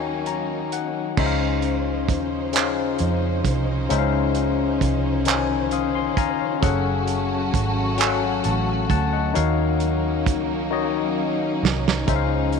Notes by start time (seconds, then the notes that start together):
Already playing: D#2 D#3 F#3 A#3 C#4 D#4 F#4 C#5 F5 G5 G#5
0.26 A#5, closed hi-hat
0.72 C2 F#5, closed hi-hat
1.17 C#2 C#3 F3 C#4 D#4 C5 E5, kick, crash
1.26 F5
1.62 closed hi-hat
2.09 D#2, kick, closed hi-hat
2.53 C#3 C#4 D#4 C5 F5, clap, closed hi-hat
2.99 F2, closed hi-hat
3.44 C2, kick, closed hi-hat
3.89 C#2 C#3 C#4 D#4 C5 E5, closed hi-hat
3.98 F5
4.35 closed hi-hat
4.81 C2, kick, closed hi-hat
5.25 D#3 C#4 D#4 C5 G#5, closed hi-hat
5.29 clap
5.71 F5 C6 D#6, closed hi-hat
5.95 G#5 C6
6.17 F1 F5 G#5 A#5, kick, closed hi-hat
6.40 C#5 F5
6.61 F#1 F#3 A3 C#4 F#4 G#4 A4 F#5, kick, closed hi-hat
7.07 closed hi-hat
7.54 G#1, kick, closed hi-hat
7.98 F#3 C#4 A4 F5 G#5, clap, closed hi-hat
8.07 F#5
8.44 A1 A5 C#6, closed hi-hat
8.90 D2 F#5 A5, kick, closed hi-hat
9.13 D#5 F#5
9.33 D#2 D#3 F#3 A#3 C#4 D#4 F#4 C#5 F5, closed hi-hat
9.80 closed hi-hat
10.26 C#2, kick, closed hi-hat
10.70 D#3 D#4 F#4 C#5 D#5
11.63 C2, snare
11.88 snare
12.06 C#2 C#3 F3 C#4 D#4 C5 E5, kick, closed hi-hat
12.16 F5
12.52 closed hi-hat